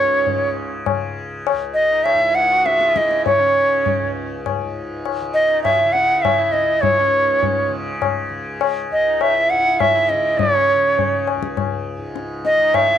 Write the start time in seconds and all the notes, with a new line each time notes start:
Already playing: C#2 G#2 C#3 C#4 C#5
0.26 C#3, tabla tin, tabla ge
0.86 tabla na, tabla ge
0.91 C#3
1.47 tabla na
1.52 C#2
1.74 D#5
1.91 D#4
2.04 E5, tabla na
2.14 G#2
2.20 E4
2.35 F#5
2.51 F#4
2.66 E5, tabla te
2.77 C#3 F4, tabla te
2.95 E4 D#5, tabla ke
3.11 tabla te
3.26 C#5, tabla tin, tabla ge
3.38 C#3 C#4
3.86 tabla tin, tabla ge
4.00 C#2
4.46 tabla na, tabla ge
4.61 G#2
5.06 tabla na
5.21 C#3
5.34 D#5
5.49 D#4
5.63 E5, tabla na, tabla ge
5.72 F#4
5.79 E4
5.84 C#3
5.93 F#5, tabla te
6.22 E5, tabla na, tabla ge
6.38 E4
6.47 C#2
6.52 D#5, tabla te
6.81 C#5, tabla tin, tabla ge
6.99 C#4
7.06 G#2
7.43 tabla tin, tabla ge
7.68 C#3
8.02 tabla na, tabla ge
8.29 C#3
8.61 tabla na
8.90 C#2 D#5
9.06 D#4
9.21 E5, tabla na
9.35 E4
9.50 G#2 F#5
9.80 E5, tabla na, tabla ge
9.94 E4
10.09 D#5, tabla te
10.13 C#3
10.38 C#5, tabla tin, tabla ge
10.54 C#4
10.75 C#3
10.99 tabla tin, tabla ge
11.27 tabla na
11.34 C#2
11.43 tabla ke
11.57 tabla na, tabla ge
11.97 G#2
12.16 tabla te
12.45 D#5, tabla te
12.57 C#3 D#4
12.74 E5, tabla na, tabla ge
12.89 E4